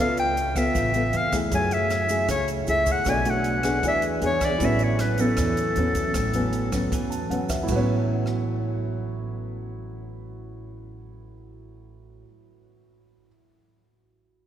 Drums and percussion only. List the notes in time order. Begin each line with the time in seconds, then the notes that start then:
0.17 closed hi-hat, shaker
0.37 closed hi-hat
0.56 kick, cross-stick, closed hi-hat, shaker
0.75 kick, closed hi-hat, shaker
0.94 closed hi-hat, shaker
1.13 closed hi-hat
1.33 kick, cross-stick, closed hi-hat, shaker
1.52 kick, closed hi-hat, shaker
1.71 closed hi-hat, shaker
1.90 cross-stick, closed hi-hat, shaker
2.09 closed hi-hat, shaker
2.29 kick, cross-stick, closed hi-hat, shaker
2.48 closed hi-hat, shaker
2.67 closed hi-hat, shaker
2.86 kick, closed hi-hat, shaker
3.05 kick, cross-stick, closed hi-hat, shaker
3.25 closed hi-hat, shaker
3.44 closed hi-hat
3.63 cross-stick, closed hi-hat, shaker
3.83 kick, closed hi-hat, shaker
4.02 closed hi-hat, shaker
4.22 closed hi-hat
4.41 kick, cross-stick, closed hi-hat, shaker
4.60 kick, closed hi-hat, shaker
4.79 closed hi-hat, shaker
4.99 cross-stick, closed hi-hat
5.18 closed hi-hat, shaker
5.37 kick, cross-stick, closed hi-hat, shaker
5.57 closed hi-hat, shaker
5.76 closed hi-hat
5.95 kick, closed hi-hat, shaker
6.14 kick, cross-stick, closed hi-hat, shaker
6.33 closed hi-hat, shaker
6.53 closed hi-hat
6.72 kick, cross-stick, closed hi-hat, shaker
6.92 kick, closed hi-hat, shaker
7.11 closed hi-hat, shaker
7.31 closed hi-hat
7.49 kick, cross-stick, closed hi-hat, shaker
7.68 kick, crash, shaker
8.26 cross-stick